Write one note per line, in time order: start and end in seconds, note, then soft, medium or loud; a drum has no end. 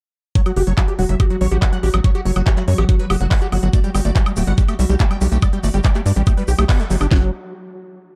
0.35 0.41 F#3 medium
0.35 7.12 F#3 medium
0.35 7.12 F#4 medium
0.35 0.40 C#5 loud
0.35 kick loud
0.35 closed hi-hat loud
0.46 0.52 F#3 medium
0.46 0.51 F#4 medium
0.46 closed hi-hat medium
0.46 high woodblock soft
0.56 0.63 F#1 medium
0.56 0.61 F#4 medium
0.56 0.62 G4 medium
0.56 open hi-hat loud
0.67 0.74 F#1 medium
0.67 0.73 F#3 medium
0.67 0.72 C#5 medium
0.67 closed hi-hat medium
0.78 0.84 F#3 medium
0.78 0.83 F#4 medium
0.78 kick loud
0.78 clap loud
0.78 closed hi-hat medium
0.78 high woodblock medium
0.88 0.94 G4 medium
0.88 closed hi-hat medium
0.99 1.05 E1 loud
0.99 1.05 F#3 medium
0.99 1.04 F#4 medium
0.99 open hi-hat loud
1.09 1.16 F#1 medium
1.09 1.15 F#3 medium
1.09 1.14 E5 medium
1.09 closed hi-hat medium
1.20 1.25 F#4 medium
1.20 1.26 G4 medium
1.20 kick loud
1.20 closed hi-hat loud
1.20 high woodblock soft
1.30 1.36 F#3 medium
1.30 1.35 F#4 medium
1.30 closed hi-hat medium
1.41 1.48 A1 loud
1.41 1.47 F#3 medium
1.41 1.46 C#5 loud
1.41 open hi-hat loud
1.52 1.58 A1 medium
1.52 1.56 F#4 medium
1.52 1.58 G4 medium
1.52 closed hi-hat medium
1.62 1.68 F#3 medium
1.62 1.67 F#4 medium
1.62 kick loud
1.62 clap loud
1.62 closed hi-hat loud
1.62 high woodblock soft
1.73 1.79 F#3 medium
1.73 1.78 F#5 loud
1.73 closed hi-hat medium
1.83 1.90 A1 loud
1.83 1.88 F#4 medium
1.83 1.89 G4 medium
1.83 open hi-hat loud
1.94 2.00 A1 medium
1.94 2.00 F#3 medium
1.94 1.99 F#4 medium
1.94 closed hi-hat medium
1.94 high woodblock medium
2.04 2.10 F#3 medium
2.04 2.09 C#5 medium
2.04 kick loud
2.04 closed hi-hat medium
2.15 2.20 F#4 medium
2.15 2.21 G4 medium
2.15 closed hi-hat medium
2.25 2.32 F#1 loud
2.25 2.31 F#3 medium
2.25 2.30 C#5 medium
2.25 open hi-hat loud
2.36 2.43 F#1 medium
2.36 2.42 F#3 medium
2.36 2.41 F#4 medium
2.36 closed hi-hat medium
2.36 high woodblock soft
2.47 2.53 G4 medium
2.47 2.52 C#5 medium
2.47 kick loud
2.47 clap loud
2.47 closed hi-hat medium
2.57 2.63 F#3 medium
2.57 2.62 F#4 medium
2.57 clap soft
2.57 closed hi-hat medium
2.68 2.74 F#2 loud
2.68 2.74 F#3 medium
2.68 2.73 C#5 loud
2.68 open hi-hat loud
2.78 2.85 A1 medium
2.78 2.83 F#4 medium
2.78 2.84 G4 medium
2.78 closed hi-hat medium
2.78 high woodblock soft
2.89 2.95 F#3 medium
2.89 2.94 F#4 medium
2.89 kick loud
2.89 closed hi-hat loud
2.99 3.05 F#3 medium
2.99 3.04 B4 medium
2.99 closed hi-hat medium
3.10 3.17 F#1 loud
3.10 3.15 F#4 medium
3.10 3.16 G4 medium
3.10 open hi-hat loud
3.10 high woodblock medium
3.21 3.27 F#1 medium
3.21 3.27 F#3 medium
3.21 3.25 F#4 medium
3.21 closed hi-hat soft
3.31 3.37 F#3 medium
3.31 3.36 F#4 medium
3.31 kick loud
3.31 clap loud
3.31 open hi-hat medium
3.42 3.47 F#4 loud
3.42 3.48 G4 medium
3.42 closed hi-hat medium
3.52 3.59 G1 loud
3.52 3.58 F#3 medium
3.52 3.57 F#4 medium
3.52 open hi-hat loud
3.52 high woodblock soft
3.63 3.69 G1 medium
3.63 3.69 F#3 medium
3.63 3.68 F#4 medium
3.63 closed hi-hat medium
3.73 3.79 A3 medium
3.73 3.78 D5 medium
3.73 kick loud
3.73 closed hi-hat loud
3.73 shaker medium
3.84 3.90 G3 medium
3.84 3.89 G4 medium
3.84 closed hi-hat medium
3.84 shaker soft
3.94 4.01 G1 loud
3.94 4.00 G3 medium
3.94 3.99 G4 medium
3.94 open hi-hat loud
3.94 high woodblock soft
3.94 shaker medium
4.05 4.12 G1 medium
4.05 4.11 A3 medium
4.05 4.10 D5 medium
4.05 closed hi-hat medium
4.05 shaker soft
4.16 4.22 G3 medium
4.16 4.21 G4 medium
4.16 kick loud
4.16 clap loud
4.16 closed hi-hat medium
4.16 shaker medium
4.26 4.32 G3 medium
4.26 closed hi-hat soft
4.26 high woodblock medium
4.26 shaker soft
4.37 4.43 D1 loud
4.37 4.43 A3 medium
4.37 4.42 G4 medium
4.37 open hi-hat loud
4.37 shaker loud
4.47 4.54 G1 medium
4.47 4.53 G3 medium
4.47 4.52 F#5 loud
4.47 closed hi-hat medium
4.47 shaker soft
4.58 4.64 G3 medium
4.58 4.63 G4 medium
4.58 kick loud
4.58 closed hi-hat medium
4.58 shaker medium
4.68 4.74 A3 medium
4.68 4.73 G4 medium
4.68 closed hi-hat medium
4.68 high woodblock soft
4.68 shaker soft
4.79 4.86 B1 loud
4.79 4.85 G3 medium
4.79 4.84 E5 loud
4.79 open hi-hat loud
4.79 shaker medium
4.90 4.96 B1 medium
4.90 4.96 G3 medium
4.90 4.94 G4 medium
4.90 closed hi-hat medium
4.90 shaker soft
4.99 5.06 A3 medium
4.99 5.05 G4 medium
4.99 kick loud
4.99 clap loud
4.99 closed hi-hat loud
4.99 shaker medium
5.11 5.17 G3 medium
5.11 5.16 G5 loud
5.11 closed hi-hat medium
5.11 high woodblock soft
5.11 shaker soft
5.21 5.28 B1 loud
5.21 5.27 G3 medium
5.21 5.26 G4 medium
5.21 open hi-hat loud
5.21 shaker loud
5.32 5.38 B1 medium
5.32 5.38 A3 medium
5.32 5.37 G4 medium
5.32 closed hi-hat soft
5.32 shaker soft
5.42 5.48 G3 medium
5.42 5.47 D5 medium
5.42 kick loud
5.42 closed hi-hat loud
5.42 high woodblock medium
5.42 shaker medium
5.53 5.59 G3 medium
5.53 5.58 G4 medium
5.53 closed hi-hat medium
5.53 shaker soft
5.63 5.70 G1 loud
5.63 5.70 A3 medium
5.63 5.68 D5 loud
5.63 open hi-hat loud
5.63 shaker medium
5.74 5.81 G1 medium
5.74 5.80 G3 medium
5.74 5.79 G4 medium
5.74 closed hi-hat medium
5.74 shaker soft
5.83 5.91 G3 medium
5.83 5.90 D5 medium
5.83 kick loud
5.83 clap loud
5.83 closed hi-hat medium
5.83 high woodblock soft
5.83 shaker medium
5.95 6.01 A3 medium
5.95 6.00 G4 medium
5.95 clap soft
5.95 closed hi-hat medium
5.95 shaker soft
6.06 6.12 G2 loud
6.06 6.12 G3 medium
6.06 6.11 D5 loud
6.06 open hi-hat loud
6.06 shaker loud
6.16 6.23 A1 medium
6.16 6.22 G3 medium
6.16 6.21 G4 medium
6.16 closed hi-hat medium
6.16 shaker soft
6.26 6.33 A3 medium
6.26 6.32 G4 medium
6.26 kick loud
6.26 closed hi-hat medium
6.26 high woodblock soft
6.26 shaker medium
6.37 6.43 G3 medium
6.37 6.42 B4 loud
6.37 closed hi-hat medium
6.37 shaker soft
6.48 6.55 B1 loud
6.48 6.52 G4 medium
6.48 6.53 G4 medium
6.48 open hi-hat loud
6.48 shaker medium
6.59 6.65 B1 medium
6.59 6.65 A3 loud
6.59 6.63 G4 medium
6.59 closed hi-hat soft
6.59 high woodblock medium
6.59 shaker soft
6.69 6.81 B3 medium
6.69 6.74 G4 medium
6.69 kick loud
6.69 clap loud
6.69 open hi-hat medium
6.69 shaker soft
6.80 6.83 G3 medium
6.80 6.85 A4 loud
6.80 closed hi-hat medium
6.80 shaker soft
6.90 6.97 G1 loud
6.90 6.96 F#3 loud
6.90 6.95 G4 medium
6.90 open hi-hat loud
6.90 shaker loud
7.01 7.07 G1 medium
7.01 7.07 D4 medium
7.01 7.06 G4 medium
7.01 closed hi-hat medium
7.01 high woodblock soft
7.01 shaker soft
7.11 7.31 F#1 loud
7.11 7.31 F#3 medium
7.11 7.27 F#4 medium
7.11 kick loud
7.11 snare loud